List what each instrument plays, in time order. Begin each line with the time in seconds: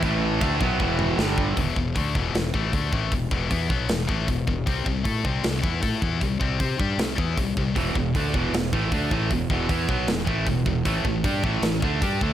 Already playing: pipe organ E4 B4
0.03 fingered electric bass A1, distorted electric guitar A2 E3 A3, pipe organ A3 A5, kick, china
0.41 fingered electric bass D2, distorted electric guitar D3 A3 D4, pipe organ F#5 G5, kick, china
0.61 fingered electric bass B1, distorted electric guitar B2 F#3 B3, kick
0.80 fingered electric bass E1, distorted electric guitar E2 B2 E3, kick
0.99 mid tom
1.18 fingered electric bass G1, distorted electric guitar G2 D3 G3, pipe organ G3 D4 A4, snare
1.38 kick
1.57 fingered electric bass E1, distorted electric guitar E2 B2 E3, kick, open hi-hat
1.76 fingered electric bass E1, distorted electric guitar E2 B2, kick
1.96 fingered electric bass D2, distorted electric guitar D3 A3 D4, kick, open hi-hat
2.15 fingered electric bass E1, distorted electric guitar E2 B2 E3, kick
2.35 fingered electric bass E1, distorted electric guitar E2 B2, snare, open hi-hat
2.54 fingered electric bass A1, distorted electric guitar A2 E3 A3, kick
2.73 fingered electric bass D2, distorted electric guitar D3 A3 D4, kick, open hi-hat
2.92 fingered electric bass A1, distorted electric guitar A2 E3 A3, kick
3.12 fingered electric bass E1, distorted electric guitar E2 B2, kick, open hi-hat
3.31 fingered electric bass E1, distorted electric guitar E2 B2 E3, kick
3.50 fingered electric bass E2, distorted electric guitar E3 B3 E4, kick, open hi-hat
3.69 fingered electric bass B1, distorted electric guitar B2 F#3 B3, kick
3.89 fingered electric bass E1, distorted electric guitar E2 B2, snare, open hi-hat
4.07 fingered electric bass A1, distorted electric guitar A2 E3 A3, kick
4.28 fingered electric bass E1, distorted electric guitar E2 B2, kick, open hi-hat
4.47 fingered electric bass E1, distorted electric guitar E2 B2, kick
4.66 fingered electric bass C2, distorted electric guitar C3 G3 C4, kick, open hi-hat
4.86 fingered electric bass C2, distorted electric guitar C3 G3, kick
5.04 fingered electric bass A2, distorted electric guitar A3 E4 A4, kick, open hi-hat
5.24 fingered electric bass C2, distorted electric guitar C3 G3 C4, kick
5.44 fingered electric bass C2, distorted electric guitar C3 G3, snare, open hi-hat
5.62 fingered electric bass E2, distorted electric guitar E3 B3 E4, kick
5.81 fingered electric bass A2, distorted electric guitar A3 E4 A4, kick, open hi-hat
6.01 fingered electric bass E2, distorted electric guitar E3 B3 E4, kick
6.21 fingered electric bass C2, distorted electric guitar C3 G3, kick, open hi-hat
6.40 fingered electric bass C2, distorted electric guitar C3 G3 C4, kick
6.60 fingered electric bass C3, distorted electric guitar C4 G4 C5, kick, open hi-hat
6.79 fingered electric bass G2, distorted electric guitar G3 D4 G4, kick
6.98 fingered electric bass C2, distorted electric guitar C3 G3, snare, open hi-hat
7.18 fingered electric bass E2, distorted electric guitar E3 B3 E4, kick
7.37 fingered electric bass C2, distorted electric guitar C3 G3, kick, open hi-hat
7.57 fingered electric bass C2, distorted electric guitar C3 G3, kick
7.76 fingered electric bass E1, distorted electric guitar E2 B2 E3, kick, open hi-hat
7.95 fingered electric bass E1, distorted electric guitar E2 B2, kick
8.15 fingered electric bass D2, distorted electric guitar D3 A3 D4, kick, open hi-hat
8.34 fingered electric bass E1, distorted electric guitar E2 B2 E3, kick
8.53 fingered electric bass E1, distorted electric guitar E2 B2, snare, open hi-hat
8.73 fingered electric bass A1, distorted electric guitar A2 E3 A3, kick
8.91 fingered electric bass D2, distorted electric guitar D3 A3 D4, kick, open hi-hat
9.11 fingered electric bass A1, distorted electric guitar A2 E3 A3, kick
9.30 fingered electric bass E1, distorted electric guitar E2 B2, kick, open hi-hat
9.50 fingered electric bass E1, distorted electric guitar E2 B2 E3, kick
9.69 fingered electric bass E2, distorted electric guitar E3 B3 E4, kick, open hi-hat
9.89 fingered electric bass B1, distorted electric guitar B2 F#3 B3, kick
10.08 fingered electric bass E1, distorted electric guitar E2 B2, snare, open hi-hat
10.27 fingered electric bass A1, distorted electric guitar A2 E3 A3, kick
10.47 fingered electric bass E1, distorted electric guitar E2 B2, kick, open hi-hat
10.66 fingered electric bass E1, distorted electric guitar E2 B2, kick
10.85 fingered electric bass A1, distorted electric guitar A2 E3 A3, kick, open hi-hat
11.05 fingered electric bass A1, distorted electric guitar A2 E3, kick
11.24 fingered electric bass G2, distorted electric guitar G3 D4 G4, kick, open hi-hat
11.43 fingered electric bass A1, distorted electric guitar A2 E3 A3, kick
11.62 fingered electric bass A1, distorted electric guitar A2 E3, snare, open hi-hat
11.82 fingered electric bass D2, distorted electric guitar D3 A3 D4, kick
12.01 fingered electric bass G2, distorted electric guitar G3 D4 G4, kick, open hi-hat
12.21 fingered electric bass D2, distorted electric guitar D3 A3 D4, kick